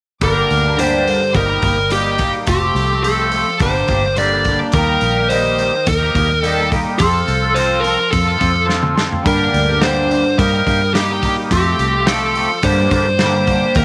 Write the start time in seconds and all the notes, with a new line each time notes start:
0.21 G1 G2 D3 G3 A#3 D4 G4 A#4 D5 G5, kick, open hi-hat
0.50 D2, open hi-hat
0.64 G3 A#3 D4 G4
0.77 G2 D3 G3 A#3 D4 G4 C5, open hi-hat
1.05 G3 A#3 D4 G4, open hi-hat
1.20 muted clean electric guitar stroke
1.33 G1 G3 A#3 D#4 G4 A#4 D#5 D#6, kick, open hi-hat
1.46 A#3 D#4 G4
1.61 G1 G3 A#3 D#4 G4, kick, open hi-hat
1.76 muted clean electric guitar stroke
1.90 G3 A#3 D#4 G4, open hi-hat
2.03 A#3 D#4 G4
2.18 G3 A#3 D#4 G4, kick, open hi-hat
2.46 F1 F3 A3 C4 G4 A4 F5 C6, kick, open hi-hat
2.75 C2, open hi-hat
2.90 A3 C4 G4
3.03 F3 A3 C4 G4 A4, open hi-hat
3.32 F3 A3 C4 G4, open hi-hat
3.47 muted clean electric guitar stroke
3.60 G1 G2 D3 G3 A#3 D4 G4 A#4 C5 D5 D6, kick, open hi-hat
3.74 G3 A#3 D4 G4
3.88 G1 G3 A#3 D4 G4, kick, open hi-hat
4.04 muted clean electric guitar stroke
4.16 G2 D3 G3 A#3 D4 G4 D5, open hi-hat
4.32 G3 A#3 D4 G4
4.44 G3 A#3 D4, kick, open hi-hat
4.49 G4
4.72 D#2 D#3 G3 A#3 D#4 A#4 D#5 D#6, kick, open hi-hat
4.76 G4
5.01 A#1, open hi-hat
5.16 A#3 D#4 G4
5.29 D#3 G3 A#3 D#4 G4 C5, open hi-hat
5.58 G3 A#3 D#4 G4, open hi-hat
5.73 muted clean electric guitar stroke
5.87 D#2 A#4, kick, open hi-hat
6.00 A#3 D#4 G4
6.15 D#2 G3 A#3 D#4 G4, kick, open hi-hat
6.29 muted clean electric guitar stroke
6.42 D#3 G3 A#3 D#4 G4 A4, open hi-hat
6.58 A#3 D#4 G4
6.71 G3 A#3 D#4 G4, kick, open hi-hat
6.97 F2 F3 C4 A4 C5 F5 C6, kick, open hi-hat
7.01 F4 A4
7.28 C2, open hi-hat
7.43 C4 F4 A4
7.54 F3 C4 F4 C5, open hi-hat
7.59 A4
7.80 F3 C4 A#4
7.84 F4 A4, open hi-hat
7.98 muted clean electric guitar stroke
8.11 F2 A4, kick, open hi-hat
8.24 C4 F4 A4
8.37 F3 C4 F4 A4, kick, open hi-hat
8.41 F2
8.53 muted clean electric guitar stroke
8.66 F3 C4 F4 A4, snare
8.80 C4 F4 A4, mid tom
8.95 F3 C4 F4 A4, snare
9.12 floor tom
9.23 G2 D3 G3 A#3 D4 G4 A#4 D5 G5 D6, kick, open hi-hat
9.27 A#4
9.54 D2, open hi-hat
9.66 G3 A#3 D4 G4
9.81 G2 D3 G3 A#3 D4 G4 C5, snare, open hi-hat
10.09 G3 A#3 D4 G4, open hi-hat
10.23 muted clean electric guitar stroke
10.38 G2 G3 A#3 D#4 G4 A#4 D#5 D#6, kick, open hi-hat
10.51 A#3 D#4 G4
10.66 G2 G3 A#3 D#4 G4, kick, open hi-hat
10.81 muted clean electric guitar stroke
10.94 G3 A#3 D#4 G4, snare, open hi-hat
10.98 G4
11.09 A#3 D#4 G4
11.23 G3 A#3 D#4 G4, kick, open hi-hat
11.51 F2 F3 A3 C4 G4 A4 F5 C6, kick, open hi-hat
11.79 C2, open hi-hat
11.93 A3 C4 G4
12.06 F3 A3 C4 G4 A4, snare, open hi-hat
12.35 F3 A3 C4 G4, open hi-hat
12.50 muted clean electric guitar stroke
12.62 G2 D3 G3 A#3 D4 G4 C5 D5 D6, kick, open hi-hat
12.77 G3 A#3 D4 G4
12.91 G2 G3 A#3 D4 G4 C5, kick, open hi-hat
13.06 muted clean electric guitar stroke
13.19 G2 D3 G3 A#3, snare, open hi-hat
13.23 D4 G4
13.34 G3 A#3 D4 G4
13.47 G3, kick, open hi-hat
13.51 A#3 D4 G4
13.75 D#2 D#3 A#3 A#4 D#5 D#6, kick, open hi-hat
13.80 D#4 G4